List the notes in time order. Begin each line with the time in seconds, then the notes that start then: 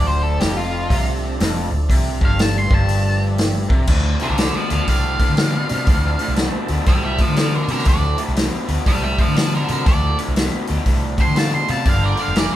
Already playing: D1 D2 F3 A3 D4
0.07 C5
0.23 A4
0.40 F1 F2 G4, snare, open hi-hat
0.57 F4
0.89 C2 C3, kick, open hi-hat
1.40 F1 F2, snare, open hi-hat
1.72 D1 D2
1.90 C2 C3, kick, open hi-hat
2.21 G1 G2 F5, kick
2.39 A5, snare, open hi-hat
2.58 C6
2.71 G1 G2 A5, kick
2.88 open hi-hat
3.38 snare, open hi-hat
3.70 C2 C3, kick
3.87 D2 A2 F3 C4 D4 A4, kick, crash
4.19 D2 A2 A4 A#4, open hi-hat
4.23 D5
4.30 C2
4.37 D2 B2 A4 D5, snare, open hi-hat
4.41 A4
4.55 C5 D5 F5
4.69 D2 B2 C5 D5 F5, open hi-hat
4.87 C2 D2 A2 D5 F5, kick, open hi-hat
5.19 D2 A2, kick, open hi-hat
5.30 D3
5.37 D2 B2, snare, open hi-hat
5.69 D2 B2 C3, open hi-hat
5.87 D2 A2, kick, open hi-hat
6.19 D2 A2, open hi-hat
6.28 C2
6.36 D2 B2, snare, open hi-hat
6.68 D2 B2, open hi-hat
6.86 C2 D2 A2 D5 G5, kick, open hi-hat
7.04 D5 E5 G5
7.18 D2 A2 C5 D5 F5, kick, open hi-hat
7.28 D3
7.36 D2 B2 C5 D5 F5, snare, open hi-hat
7.54 A4 A#4 D5
7.68 D2 B2 C3 A4 A#4, open hi-hat
7.72 D5
7.79 snare
7.85 D2 A2 F3 A3 C4 D4 A4 D5, kick, open hi-hat
8.17 D2 A2, open hi-hat
8.28 C2
8.35 D2 B2, snare, open hi-hat
8.67 D2 B2, open hi-hat
8.86 C2 D2 A2 D5 G5, kick, open hi-hat
9.03 D5 E5 G5
9.18 D2 A2 C5 D5 F5, kick, open hi-hat
9.28 D3
9.36 D2 B2 C5 D5 F5, snare, open hi-hat
9.55 A4 A#4 D5
9.68 D2 B2 C3 A4 D5, open hi-hat
9.73 A#4
9.86 D2 A2 A4 D5, kick, open hi-hat
10.17 D2 A2, open hi-hat
10.28 C2
10.36 D2 B2, snare, open hi-hat
10.67 D2 B2, open hi-hat
10.85 C2 D2 A2, kick, open hi-hat
11.17 D2 A2 A5, kick, open hi-hat
11.21 C6
11.28 D3
11.35 D2 B2 F5 A5, snare, open hi-hat
11.52 A5 C6
11.67 D2 B2 C3 F5 A5, open hi-hat
11.85 G1 G2 D3 F3 A#3 D4 G4 D5 F5, kick, open hi-hat
12.03 A#4 D5
12.17 G2 D3 D5, open hi-hat
12.22 F5
12.28 F1
12.34 G2 E3 A#4 D5, snare, open hi-hat